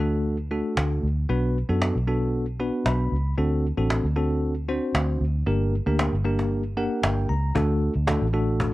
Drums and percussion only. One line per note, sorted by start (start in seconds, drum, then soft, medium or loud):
0.77 cajon slap loud
1.82 cajon slap loud
2.86 cajon slap loud
3.90 cajon slap loud
4.95 cajon slap loud
5.99 cajon slap loud
6.39 cajon slap medium
7.04 cajon slap loud
7.56 cajon bass loud
7.69 cajon slap soft
7.82 cajon slap soft
7.95 cajon slap soft
8.07 cajon bass loud
8.07 cajon slap loud
8.22 cajon slap soft
8.48 cajon slap soft
8.60 cajon bass loud